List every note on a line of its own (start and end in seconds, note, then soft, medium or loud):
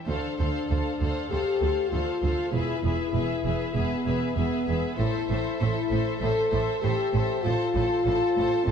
0.07 0.16 D2 soft
0.07 1.26 D4 medium
0.07 0.36 A4 soft
0.07 0.37 C5 soft
0.07 0.38 F5 soft
0.38 0.47 D2 soft
0.38 0.48 D2 soft
0.38 0.66 A4 soft
0.38 0.69 C5 soft
0.38 0.68 F5 soft
0.68 0.78 D2 soft
0.68 0.98 A4 soft
0.68 1.00 C5 soft
0.68 0.99 F5 soft
0.99 1.09 D2 soft
0.99 1.28 A4 soft
0.99 1.30 C5 soft
0.99 1.30 F5 soft
1.29 1.39 D2 soft
1.29 1.90 G4 medium
1.29 1.58 A4 soft
1.29 1.61 C5 soft
1.29 1.61 F5 soft
1.59 1.69 D2 soft
1.59 1.89 A4 soft
1.59 1.90 C5 soft
1.59 1.92 F5 soft
1.90 2.00 D2 soft
1.90 2.52 F4 medium
1.90 2.21 A4 soft
1.90 2.22 C5 soft
1.90 2.22 F5 soft
2.22 2.30 D2 soft
2.22 2.31 D2 soft
2.22 2.53 A4 soft
2.22 2.53 C5 soft
2.22 2.53 F5 soft
2.50 2.60 E1 soft
2.50 2.60 E2 soft
2.50 3.72 E4 medium
2.50 2.81 G#4 soft
2.54 2.84 B4 soft
2.54 2.84 E5 soft
2.83 2.92 E1 soft
2.83 2.91 E2 soft
2.83 3.12 G#4 soft
2.83 3.13 B4 soft
2.83 3.14 E5 soft
3.13 3.21 E1 soft
3.13 3.22 E2 soft
3.13 3.44 G#4 soft
3.13 3.44 B4 soft
3.13 3.43 E5 soft
3.44 3.52 E1 soft
3.44 3.53 E2 soft
3.44 3.73 G#4 soft
3.44 3.74 B4 soft
3.44 3.74 E5 soft
3.74 3.83 E1 medium
3.74 3.84 E2 soft
3.74 4.36 B3 medium
3.74 4.04 G#4 soft
3.74 4.06 B4 soft
3.74 4.03 E5 soft
4.04 4.15 E1 soft
4.04 4.14 E2 soft
4.04 4.35 G#4 soft
4.04 4.36 B4 soft
4.04 4.34 E5 soft
4.35 4.45 E1 soft
4.35 4.45 E2 soft
4.35 4.97 B3 medium
4.35 4.65 G#4 soft
4.35 4.67 B4 soft
4.35 4.63 E5 soft
4.64 4.76 E1 soft
4.64 4.76 E2 soft
4.64 4.97 G#4 soft
4.64 4.94 E5 soft
4.69 4.98 B4 soft
4.95 5.06 A1 soft
4.95 5.07 A2 soft
4.95 6.18 E4 medium
4.95 5.28 A4 soft
4.95 5.28 C5 soft
4.95 5.25 E5 soft
5.27 5.38 A1 soft
5.27 5.38 A2 soft
5.27 5.59 A4 soft
5.27 5.59 C5 soft
5.27 5.58 E5 soft
5.59 5.69 A1 medium
5.59 5.68 A2 medium
5.59 5.90 A4 soft
5.59 5.89 C5 soft
5.59 5.87 E5 soft
5.88 5.99 A1 soft
5.88 5.99 A2 soft
5.88 6.20 A4 soft
5.88 6.19 C5 soft
5.88 6.18 E5 soft
6.19 6.29 A1 medium
6.19 6.29 A2 soft
6.19 6.50 A4 soft
6.19 6.81 A4 medium
6.19 6.50 C5 soft
6.19 6.49 E5 soft
6.50 6.61 A1 soft
6.50 6.60 A2 soft
6.50 6.82 A4 soft
6.50 6.81 C5 soft
6.50 6.81 E5 soft
6.81 6.92 A1 medium
6.81 6.91 A2 soft
6.81 7.42 G4 medium
6.81 7.12 A4 soft
6.81 7.12 C5 soft
6.81 7.13 E5 soft
7.13 7.22 A1 soft
7.13 7.22 A2 soft
7.13 7.43 A4 soft
7.13 7.43 C5 soft
7.13 7.44 E5 soft
7.43 7.53 A1 soft
7.43 7.52 A2 medium
7.43 8.66 F4 medium
7.43 7.74 A4 soft
7.43 7.74 C5 soft
7.43 7.74 A5 medium
7.74 7.83 A1 medium
7.74 7.82 A2 soft
7.74 8.05 A4 soft
7.74 8.05 C5 soft
7.74 8.04 A5 soft
8.05 8.14 A1 medium
8.05 8.14 A2 medium
8.05 8.36 A4 medium
8.05 8.36 C5 soft
8.05 8.35 A5 medium
8.37 8.45 A1 soft
8.37 8.45 A2 soft
8.37 8.66 A4 soft
8.37 8.66 C5 soft
8.37 8.66 A5 soft
8.65 8.72 A1 medium
8.65 8.72 A2 medium
8.65 8.72 C4 medium
8.65 8.72 A4 medium
8.65 8.72 C5 medium
8.65 8.72 A5 soft